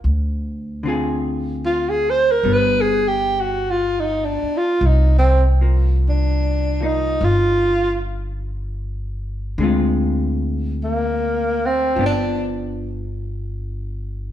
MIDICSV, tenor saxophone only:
0, 0, Header, 1, 2, 480
1, 0, Start_track
1, 0, Key_signature, -3, "minor"
1, 0, Tempo, 1192843
1, 21, Time_signature, 4, 2, 24, 8
1, 5763, End_track
2, 0, Start_track
2, 0, Title_t, "Tenor saxophone"
2, 0, Program_c, 0, 66
2, 667, Note_on_c, 0, 65, 71
2, 761, Note_on_c, 0, 68, 73
2, 767, Note_off_c, 0, 65, 0
2, 845, Note_on_c, 0, 72, 83
2, 851, Note_off_c, 0, 68, 0
2, 930, Note_on_c, 0, 70, 82
2, 936, Note_off_c, 0, 72, 0
2, 1019, Note_on_c, 0, 71, 95
2, 1025, Note_off_c, 0, 70, 0
2, 1130, Note_on_c, 0, 68, 83
2, 1136, Note_off_c, 0, 71, 0
2, 1239, Note_on_c, 0, 67, 70
2, 1245, Note_off_c, 0, 68, 0
2, 1370, Note_on_c, 0, 66, 65
2, 1376, Note_off_c, 0, 67, 0
2, 1490, Note_on_c, 0, 65, 75
2, 1496, Note_off_c, 0, 66, 0
2, 1609, Note_on_c, 0, 63, 67
2, 1615, Note_off_c, 0, 65, 0
2, 1711, Note_on_c, 0, 62, 73
2, 1717, Note_off_c, 0, 63, 0
2, 1840, Note_on_c, 0, 65, 83
2, 1846, Note_off_c, 0, 62, 0
2, 1956, Note_on_c, 0, 63, 71
2, 1962, Note_off_c, 0, 65, 0
2, 2084, Note_off_c, 0, 63, 0
2, 2086, Note_on_c, 0, 60, 75
2, 2186, Note_off_c, 0, 60, 0
2, 2450, Note_on_c, 0, 62, 69
2, 2760, Note_on_c, 0, 63, 73
2, 2766, Note_off_c, 0, 62, 0
2, 2915, Note_on_c, 0, 65, 85
2, 2921, Note_off_c, 0, 63, 0
2, 3225, Note_off_c, 0, 65, 0
2, 4361, Note_on_c, 0, 58, 66
2, 4693, Note_on_c, 0, 60, 72
2, 4699, Note_off_c, 0, 58, 0
2, 4836, Note_off_c, 0, 60, 0
2, 4854, Note_on_c, 0, 62, 82
2, 5036, Note_off_c, 0, 62, 0
2, 5763, End_track
0, 0, End_of_file